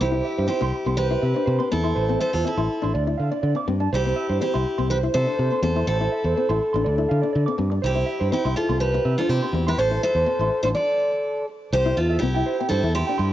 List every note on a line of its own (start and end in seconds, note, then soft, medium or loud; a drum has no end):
0.01 0.20 C2 loud
0.01 0.46 E4 medium
0.01 0.46 G4 medium
0.01 0.10 C5 loud
0.12 0.33 E4 medium
0.12 0.22 C5 medium
0.25 0.35 E5 medium
0.38 0.47 G2 medium
0.38 0.47 C5 medium
0.47 0.59 C4 medium
0.47 0.94 E4 medium
0.47 0.96 G4 medium
0.47 0.59 C5 medium
0.61 0.71 C2 medium
0.61 0.71 C6 medium
0.61 muted nylon-string guitar stroke medium
0.86 1.15 C2 medium
0.86 1.07 C4 medium
0.86 0.95 C6 medium
0.97 1.67 G4 medium
0.97 1.72 B4 medium
0.97 1.08 C5 medium
1.10 1.32 E4 medium
1.10 1.19 C5 medium
1.22 1.33 C3 medium
1.22 1.32 E5 medium
1.34 1.57 D4 medium
1.34 1.44 C5 medium
1.46 1.58 C3 loud
1.46 1.56 C5 medium
1.59 1.70 C4 medium
1.59 1.68 C6 medium
1.71 1.92 E2 medium
1.71 1.82 C4 medium
1.71 2.17 E4 medium
1.71 2.19 A4 medium
1.84 1.94 E4 medium
1.84 1.93 C6 medium
1.95 2.16 A1 medium
1.95 2.05 C5 medium
2.09 2.30 C4 medium
2.09 2.17 C5 medium
2.19 2.32 A4 medium
2.19 2.34 C5 medium
2.19 2.30 E5 medium
2.33 2.43 E2 medium
2.33 2.44 F4 medium
2.33 2.45 A4 medium
2.33 2.42 C5 medium
2.45 2.56 C4 medium
2.45 2.92 E4 medium
2.45 2.92 A4 medium
2.45 2.55 E5 medium
2.57 2.67 A1 medium
2.57 2.79 E4 medium
2.57 2.67 C6 medium
2.82 2.92 A1 medium
2.82 3.03 D4 medium
2.82 2.92 C6 medium
2.94 3.14 D2 medium
2.94 3.04 D5 medium
3.07 3.28 E4 medium
3.07 3.16 D5 medium
3.18 3.30 D3 medium
3.18 3.28 F5 medium
3.31 3.52 D4 medium
3.31 3.40 D5 medium
3.43 3.53 D3 medium
3.43 3.53 D5 medium
3.55 3.65 C4 medium
3.55 3.65 D6 medium
3.68 3.87 G2 medium
3.68 3.79 C4 medium
3.80 3.90 D4 medium
3.80 3.89 A5 medium
3.93 4.12 C2 medium
3.93 4.39 E4 medium
3.93 4.40 G4 medium
3.93 4.02 C5 medium
4.05 4.26 C4 medium
4.05 4.14 C5 medium
4.16 4.26 E5 medium
4.29 4.39 G2 medium
4.29 4.38 C5 medium
4.41 4.52 C4 medium
4.41 4.87 E4 soft
4.41 4.89 G4 medium
4.41 4.51 C5 medium
4.54 4.64 C2 medium
4.54 4.74 E4 medium
4.54 4.62 C6 medium
4.78 5.07 C2 medium
4.78 4.99 C4 medium
4.78 4.87 C6 medium
4.90 4.97 G4 medium
4.90 4.97 B4 medium
4.90 5.00 C5 medium
5.03 5.24 E4 medium
5.03 5.12 C5 medium
5.14 5.25 C3 medium
5.14 5.60 A4 medium
5.14 5.61 C5 loud
5.14 5.25 E5 medium
5.27 5.48 D4 medium
5.27 5.37 C5 medium
5.39 5.49 C3 medium
5.39 5.49 C5 medium
5.52 5.61 C4 medium
5.52 5.61 C6 medium
5.62 5.82 E2 medium
5.62 5.74 C4 medium
5.62 5.86 A4 medium
5.62 5.88 C5 medium
5.76 5.86 E4 medium
5.76 5.85 C6 medium
5.87 6.07 A1 loud
5.87 7.55 E4 medium
5.87 7.54 A4 medium
5.87 5.98 C5 medium
6.01 6.21 E4 medium
6.01 6.10 C5 medium
6.12 6.22 E5 medium
6.24 6.34 E2 medium
6.24 6.34 C5 medium
6.36 6.48 C4 medium
6.36 6.46 C5 medium
6.49 6.59 A1 loud
6.49 6.71 E4 medium
6.49 6.58 C6 medium
6.73 6.83 A1 medium
6.73 6.96 D4 medium
6.73 6.82 C6 medium
6.85 7.05 D2 medium
6.85 6.95 D5 medium
6.98 7.19 E4 medium
6.98 7.07 D5 medium
7.09 7.21 D3 medium
7.09 7.19 F5 medium
7.22 7.44 D4 medium
7.22 7.31 D5 medium
7.33 7.45 D3 medium
7.33 7.43 D5 medium
7.46 7.57 C4 medium
7.46 7.55 D6 medium
7.58 7.78 G2 medium
7.58 7.69 C4 medium
7.70 7.81 D4 medium
7.70 muted clean electric guitar stroke medium
7.82 8.03 C2 medium
7.82 8.29 E4 medium
7.82 8.30 G4 medium
7.82 7.92 C5 medium
7.95 8.16 E4 medium
7.95 8.04 C5 medium
8.06 8.17 E5 medium
8.20 8.30 G2 medium
8.20 8.29 C5 medium
8.31 8.43 C4 medium
8.31 8.55 E4 medium
8.31 8.55 G4 medium
8.31 8.41 C5 medium
8.45 8.54 C2 medium
8.45 8.66 E4 medium
8.45 8.54 C6 medium
8.56 8.79 F4 medium
8.56 8.79 A4 medium
8.69 8.98 C2 medium
8.69 8.90 C4 medium
8.69 8.78 C6 medium
8.80 9.15 G4 medium
8.80 9.19 B4 medium
8.80 8.90 C5 medium
8.92 9.01 C5 medium
8.92 muted nylon-string guitar stroke medium
9.05 9.15 C3 medium
9.05 9.15 E5 medium
9.18 9.40 D4 medium
9.18 9.29 F4 medium
9.18 9.29 A4 medium
9.18 9.26 C5 medium
9.29 9.39 C3 medium
9.29 9.64 E4 medium
9.29 9.67 G4 medium
9.29 9.39 C5 medium
9.43 9.53 C4 medium
9.43 9.51 C6 medium
9.53 9.73 E2 medium
9.53 9.65 C4 medium
9.67 9.77 E4 medium
9.67 9.78 G4 medium
9.67 9.78 B4 medium
9.67 9.75 C6 medium
9.78 9.97 A1 medium
9.78 10.01 A4 medium
9.78 10.02 C5 medium
9.78 9.88 C5 medium
9.91 10.12 E4 medium
9.91 10.00 C5 medium
10.03 10.61 A4 medium
10.03 10.61 C5 medium
10.03 10.13 E5 medium
10.15 10.24 E2 medium
10.15 10.24 C5 medium
10.26 10.37 C4 medium
10.26 10.37 C5 medium
10.39 10.48 A1 medium
10.39 10.61 E4 medium
10.39 10.49 C6 medium
10.63 10.73 A1 medium
10.63 10.84 D4 medium
10.63 10.68 A4 medium
10.63 10.68 C5 medium
10.63 10.73 C6 medium
10.75 11.45 A4 medium
10.75 11.44 D5 medium
11.72 11.92 C2 loud
11.72 11.96 G4 medium
11.72 11.82 C5 medium
11.72 11.98 C5 medium
11.86 12.06 E4 medium
11.97 12.17 E2 medium
11.97 12.20 F4 medium
11.97 12.18 A4 medium
12.10 12.18 E5 medium
12.19 12.41 C2 loud
12.19 12.33 C4 medium
12.19 12.66 E4 medium
12.19 12.68 G4 medium
12.34 12.56 E4 medium
12.34 12.43 G5 medium
12.46 12.56 C5 medium
12.59 12.80 C4 medium
12.59 12.68 G5 medium
12.69 12.81 G2 medium
12.69 12.92 E4 medium
12.69 12.92 A4 medium
12.69 12.80 C5 medium
12.83 13.02 E2 medium
12.83 13.04 E4 medium
12.95 13.33 E4 medium
12.95 13.33 G4 medium
12.95 13.05 C6 medium
13.07 13.29 D4 medium
13.07 13.16 G5 medium
13.18 13.33 G2 medium
13.18 13.28 C6 medium